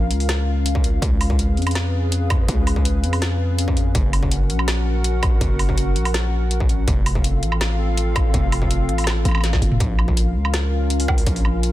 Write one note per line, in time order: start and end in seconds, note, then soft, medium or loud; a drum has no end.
0.00 0.12 A#1 loud
0.00 6.84 C#4 medium
0.00 0.98 F4 medium
0.00 0.99 A#4 medium
0.00 3.91 F5 medium
0.11 1.01 C#2 medium
0.11 closed hi-hat soft
0.20 open hi-hat soft
0.29 snare loud
0.29 closed hi-hat medium
0.66 closed hi-hat medium
0.75 kick medium
0.84 closed hi-hat soft
1.02 1.58 C#2 loud
1.02 3.92 G#4 medium
1.02 3.92 B4 medium
1.02 kick loud
1.02 closed hi-hat medium
1.21 open hi-hat medium
1.21 low woodblock medium
1.30 kick medium
1.39 closed hi-hat medium
1.57 2.47 F2 medium
1.57 closed hi-hat soft
1.62 closed hi-hat soft
1.67 closed hi-hat soft
1.67 low woodblock soft
1.71 closed hi-hat soft
1.75 snare loud
1.75 closed hi-hat medium
2.12 closed hi-hat medium
2.30 kick loud
2.30 closed hi-hat soft
2.30 low woodblock medium
2.48 3.05 C#2 loud
2.48 kick loud
2.48 closed hi-hat medium
2.67 open hi-hat medium
2.67 low woodblock medium
2.76 kick medium
2.85 closed hi-hat medium
3.03 3.94 F2 medium
3.03 closed hi-hat soft
3.13 open hi-hat soft
3.13 low woodblock soft
3.22 snare loud
3.22 closed hi-hat medium
3.58 closed hi-hat medium
3.68 kick medium
3.77 closed hi-hat soft
3.95 4.51 F#1 loud
3.95 6.85 F#4 medium
3.95 6.85 A#4 medium
3.95 6.85 F#5 medium
3.95 kick loud
3.95 closed hi-hat medium
4.13 open hi-hat medium
4.13 low woodblock medium
4.23 kick medium
4.31 closed hi-hat medium
4.50 5.40 A#1 medium
4.50 closed hi-hat soft
4.59 low woodblock soft
4.68 snare loud
4.68 closed hi-hat medium
5.04 closed hi-hat medium
5.23 kick loud
5.23 closed hi-hat soft
5.23 low woodblock medium
5.41 5.97 F#1 loud
5.41 kick loud
5.41 closed hi-hat medium
5.59 open hi-hat medium
5.59 low woodblock medium
5.69 kick medium
5.78 closed hi-hat medium
5.96 6.86 A#1 medium
5.96 closed hi-hat soft
6.05 open hi-hat soft
6.05 low woodblock medium
6.14 snare loud
6.14 closed hi-hat medium
6.51 closed hi-hat medium
6.60 kick medium
6.69 closed hi-hat soft
6.88 7.44 F1 loud
6.88 9.78 C4 medium
6.88 9.78 F4 medium
6.88 9.78 A4 medium
6.88 9.78 F5 medium
6.88 kick loud
6.88 closed hi-hat medium
7.06 open hi-hat medium
7.06 low woodblock medium
7.15 kick medium
7.24 closed hi-hat medium
7.43 8.33 A1 medium
7.43 closed hi-hat soft
7.52 low woodblock medium
7.61 snare loud
7.61 closed hi-hat medium
7.97 closed hi-hat medium
8.16 kick loud
8.16 closed hi-hat soft
8.16 low woodblock medium
8.34 8.90 F1 loud
8.34 kick loud
8.34 closed hi-hat medium
8.52 open hi-hat medium
8.52 low woodblock medium
8.62 kick medium
8.71 closed hi-hat medium
8.89 9.25 A1 medium
8.89 closed hi-hat soft
8.98 open hi-hat soft
8.98 low woodblock soft
9.04 snare loud
9.04 closed hi-hat medium
9.04 low woodblock soft
9.10 low woodblock soft
9.25 9.61 A1 medium
9.25 closed hi-hat soft
9.25 low woodblock soft
9.29 low woodblock soft
9.31 low woodblock soft
9.35 low woodblock medium
9.38 low woodblock soft
9.41 snare medium
9.41 closed hi-hat medium
9.41 low woodblock soft
9.53 kick medium
9.53 snare medium
9.62 9.79 F#1 loud
9.62 closed hi-hat soft
9.72 mid tom medium
9.80 10.36 A#1 loud
9.80 11.72 C#4 medium
9.80 11.72 F4 medium
9.80 11.72 A#4 medium
9.80 11.72 F5 medium
9.80 kick loud
9.80 closed hi-hat medium
9.99 low woodblock medium
10.08 kick medium
10.17 closed hi-hat medium
10.35 11.25 C#2 medium
10.45 low woodblock medium
10.54 snare loud
10.54 closed hi-hat medium
10.90 closed hi-hat medium
11.00 open hi-hat medium
11.08 kick loud
11.08 low woodblock medium
11.18 open hi-hat medium
11.27 11.72 A#1 loud
11.27 kick loud
11.27 closed hi-hat medium
11.36 open hi-hat medium
11.45 low woodblock medium
11.63 closed hi-hat medium